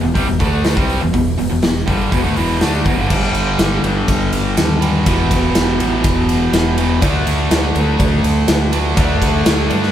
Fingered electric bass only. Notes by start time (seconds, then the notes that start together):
0.03 E1
0.15 C2
0.28 E1
0.40 D2
0.77 C2
1.02 E1
1.14 E1
1.39 E1
1.51 E1
1.63 E1
1.88 G1
2.12 E1
2.25 D2
2.38 E1
2.62 D2
2.85 E1
2.98 G1
3.10 G1
3.34 G1
3.59 G1
3.83 G1
4.08 G1
4.33 G1
4.57 D#2
5.06 E1
5.31 E1
5.55 E1
5.79 A1
6.04 E1
6.53 E1
7.02 D2
7.27 D2
7.51 D2
7.75 D2
7.99 D2
8.24 D2
8.49 D2
8.98 D2
9.21 D2
9.46 D2
9.71 G2